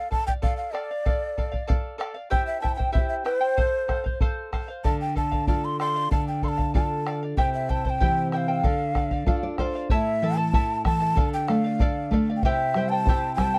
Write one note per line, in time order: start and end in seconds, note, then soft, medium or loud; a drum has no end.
0.00 0.11 D5 medium
0.00 0.11 F5 medium
0.11 0.27 A4 medium
0.11 0.27 D5 medium
0.11 0.25 F5 medium
0.11 0.26 A5 loud
0.11 bombo low medium
0.27 0.41 D5 soft
0.27 0.42 F5 soft
0.27 0.33 G5 loud
0.27 bombo low soft
0.42 0.71 A4 medium
0.42 0.72 D5 medium
0.42 0.57 F5 medium
0.42 0.73 F5 medium
0.42 bombo low medium
0.57 0.75 F5 medium
0.73 0.89 A4 medium
0.73 0.90 D5 medium
0.73 1.69 D5 medium
0.73 0.89 F5 medium
0.73 bombo rim soft
0.91 1.05 D5 soft
0.91 1.05 F5 soft
1.06 1.36 A4 medium
1.06 1.37 D5 medium
1.06 1.37 F5 medium
1.06 bombo low medium
1.37 1.53 A4 medium
1.37 1.52 D5 medium
1.37 1.50 F5 medium
1.37 bombo low medium
1.52 1.67 D5 soft
1.52 1.67 F5 medium
1.52 bombo low soft
1.68 1.97 A4 medium
1.68 1.98 D5 medium
1.68 1.99 F5 medium
1.68 bombo low medium
1.98 2.15 A4 medium
1.98 2.15 D5 medium
1.98 2.13 F5 medium
1.98 bombo rim medium
2.14 2.30 D5 soft
2.14 2.31 F5 medium
2.30 2.61 E4 medium
2.30 2.63 G4 medium
2.30 2.62 C5 medium
2.30 2.61 E5 medium
2.30 2.46 G5 loud
2.30 2.62 G5 medium
2.30 bombo low medium
2.47 2.61 E5 loud
2.61 2.78 E4 medium
2.61 2.78 C5 medium
2.61 2.79 E5 medium
2.61 2.76 G5 medium
2.61 2.75 A5 medium
2.61 bombo low medium
2.75 2.92 C5 medium
2.75 2.92 G5 medium
2.79 2.91 E4 soft
2.79 bombo low medium
2.92 3.24 E4 medium
2.92 3.25 G4 medium
2.92 3.24 C5 medium
2.92 3.23 E5 medium
2.92 3.08 E5 medium
2.92 3.24 G5 medium
2.92 bombo low medium
3.09 3.15 E5 medium
3.24 3.41 E4 medium
3.24 3.40 B4 loud
3.24 3.40 C5 medium
3.24 3.41 E5 medium
3.24 3.39 G5 medium
3.24 bombo rim medium
3.40 3.56 E4 soft
3.40 4.16 C5 loud
3.40 3.56 C5 soft
3.40 3.57 G5 medium
3.57 3.87 A4 medium
3.57 3.88 C5 medium
3.57 3.88 F5 medium
3.57 bombo low medium
3.88 4.05 A4 medium
3.88 4.05 C5 medium
3.88 4.03 F5 medium
3.88 bombo rim soft
3.88 bombo low medium
4.04 4.20 C5 medium
4.04 4.20 F5 medium
4.04 bombo low medium
4.20 4.51 A4 medium
4.20 4.52 C5 medium
4.20 4.52 F5 medium
4.20 bombo low medium
4.52 4.68 A4 medium
4.52 4.68 C5 medium
4.52 4.67 F5 medium
4.52 bombo rim medium
4.52 bombo low soft
4.68 4.85 C5 soft
4.68 4.84 F5 medium
4.84 6.07 D3 medium
4.84 5.14 A4 medium
4.84 5.15 D5 medium
4.84 5.16 F5 medium
4.84 4.99 A5 loud
4.84 bombo low medium
5.01 5.15 G5 medium
5.15 5.31 A4 medium
5.15 5.31 D5 medium
5.15 5.30 F5 medium
5.15 5.46 A5 medium
5.15 bombo low medium
5.31 5.47 D5 soft
5.31 5.47 F5 medium
5.31 bombo low medium
5.47 6.08 D4 soft
5.47 6.09 F4 soft
5.47 5.79 A4 medium
5.47 6.09 A4 medium
5.47 5.79 D5 medium
5.47 5.79 F5 medium
5.47 5.66 A5 medium
5.47 bombo low medium
5.65 5.80 C6 medium
5.80 5.95 A4 medium
5.80 5.95 D5 medium
5.80 5.94 F5 medium
5.80 6.09 C6 loud
5.80 bombo rim medium
5.96 6.10 D5 soft
5.96 6.11 F5 soft
6.11 7.33 D3 medium
6.11 6.42 A4 medium
6.11 6.43 D5 medium
6.11 6.43 F5 medium
6.11 6.26 A5 loud
6.11 bombo low medium
6.28 6.45 G5 medium
6.42 6.58 A4 medium
6.42 6.58 D5 medium
6.42 6.56 F5 medium
6.42 6.49 C6 medium
6.42 bombo low medium
6.49 6.74 A5 loud
6.58 6.73 D5 soft
6.58 6.73 F5 medium
6.58 bombo low medium
6.74 7.35 D4 soft
6.74 7.36 F4 soft
6.74 7.05 A4 medium
6.74 7.36 A4 soft
6.74 7.06 D5 medium
6.74 7.06 F5 medium
6.74 7.19 A5 medium
6.74 bombo low medium
7.06 7.21 A4 medium
7.06 7.22 D5 medium
7.06 7.22 F5 medium
7.06 bombo rim medium
7.23 7.37 D5 soft
7.23 7.38 F5 medium
7.37 8.60 C3 medium
7.37 7.68 E4 medium
7.37 7.69 G4 medium
7.37 7.69 C5 medium
7.37 7.68 E5 medium
7.37 7.52 G5 medium
7.37 7.69 G5 medium
7.37 bombo low medium
7.54 7.71 E5 medium
7.69 7.85 E4 medium
7.69 7.85 C5 medium
7.69 7.85 E5 medium
7.69 7.83 G5 medium
7.69 7.85 A5 medium
7.69 bombo low medium
7.85 8.00 E4 soft
7.85 8.00 C5 soft
7.85 8.00 G5 medium
7.85 7.91 A5 medium
7.85 bombo low medium
7.90 8.32 G5 loud
8.00 8.62 E3 soft
8.00 8.62 C4 soft
8.00 8.32 E4 medium
8.00 8.32 G4 medium
8.00 8.63 G4 medium
8.00 8.32 C5 medium
8.00 8.32 E5 medium
8.00 8.32 G5 medium
8.00 bombo low medium
8.32 8.48 E4 medium
8.32 8.47 C5 medium
8.32 8.48 E5 medium
8.32 8.38 G5 medium
8.32 8.47 G5 medium
8.32 bombo rim medium
8.37 9.54 F5 loud
8.48 8.63 E4 soft
8.48 8.64 C5 soft
8.48 8.64 G5 medium
8.63 9.26 D3 medium
8.63 8.94 A4 medium
8.63 8.94 D5 medium
8.63 8.95 F5 medium
8.63 bombo low medium
8.95 9.11 A4 medium
8.95 9.11 D5 medium
8.95 9.10 F5 medium
8.95 bombo rim medium
8.95 bombo low medium
9.11 9.26 D5 medium
9.11 9.26 F5 medium
9.11 bombo low medium
9.26 9.88 D4 soft
9.26 9.88 F4 soft
9.26 9.57 A4 medium
9.26 9.89 A4 medium
9.26 9.58 D5 medium
9.26 9.59 F5 medium
9.26 9.42 F5 medium
9.26 bombo low medium
9.43 9.57 D5 medium
9.58 9.74 A4 medium
9.58 9.88 C5 medium
9.58 9.75 D5 medium
9.58 9.74 F5 medium
9.58 bombo rim medium
9.58 bombo low soft
9.75 9.90 D5 medium
9.75 9.90 F5 medium
9.90 11.13 A2 medium
9.90 10.22 E4 medium
9.90 10.22 A4 medium
9.90 10.22 C#5 medium
9.90 10.21 E5 medium
9.90 10.39 E5 loud
9.90 10.22 A5 medium
9.90 bombo low medium
10.22 10.53 E3 soft
10.22 10.37 E4 medium
10.22 10.36 A4 medium
10.22 10.38 E5 medium
10.22 10.36 A5 medium
10.37 10.53 E4 soft
10.37 10.53 A4 medium
10.37 10.53 A5 medium
10.37 10.85 A5 loud
10.53 10.84 E4 medium
10.53 10.85 A4 medium
10.53 10.85 C#5 medium
10.53 10.83 E5 medium
10.53 10.85 A5 medium
10.53 bombo low medium
10.85 11.16 E3 medium
10.85 11.00 E4 medium
10.85 11.00 A4 medium
10.85 11.01 E5 medium
10.85 11.29 A5 loud
10.85 10.99 A5 medium
10.85 bombo rim medium
10.85 bombo low medium
11.00 11.16 E4 soft
11.00 11.15 A4 medium
11.00 11.16 A5 medium
11.15 12.39 D3 medium
11.15 11.47 A4 medium
11.15 11.48 D5 medium
11.15 11.49 F5 medium
11.15 bombo low medium
11.34 11.50 G5 medium
11.48 11.80 A3 medium
11.48 11.64 A4 medium
11.48 11.65 D5 medium
11.48 12.12 F5 medium
11.48 11.63 F5 medium
11.48 bombo rim medium
11.64 11.79 D5 soft
11.64 11.80 F5 medium
11.79 12.11 A4 medium
11.79 12.10 D5 medium
11.79 12.12 D5 medium
11.79 12.12 F5 medium
11.79 bombo low medium
12.11 12.42 A3 medium
12.11 12.28 A4 medium
12.11 12.28 D5 medium
12.11 12.28 F5 medium
12.11 bombo low medium
12.29 12.44 D5 soft
12.29 12.44 F5 medium
12.36 12.45 G5 medium
12.43 13.59 C3 medium
12.43 12.76 E4 medium
12.43 12.76 G4 medium
12.43 12.76 C5 medium
12.43 12.91 E5 loud
12.43 12.75 E5 medium
12.43 12.76 G5 medium
12.43 bombo low medium
12.74 13.06 G3 medium
12.74 12.92 E4 medium
12.74 12.91 C5 medium
12.74 12.91 E5 medium
12.74 12.90 G5 medium
12.74 bombo rim medium
12.89 13.08 E4 medium
12.89 13.08 C5 soft
12.89 13.07 G5 medium
12.89 13.35 A5 loud
13.05 13.38 E4 medium
13.05 13.39 G4 medium
13.05 13.37 C5 medium
13.05 13.39 C5 medium
13.05 13.38 E5 medium
13.05 13.39 G5 medium
13.05 bombo low medium
13.35 13.59 G3 medium
13.35 13.55 E5 medium
13.35 13.59 A5 loud
13.35 bombo rim medium
13.35 bombo low medium
13.39 13.54 E4 medium
13.39 13.54 C5 medium
13.39 13.53 G5 medium
13.54 13.59 E4 soft
13.54 13.59 C5 soft
13.54 13.59 G5 medium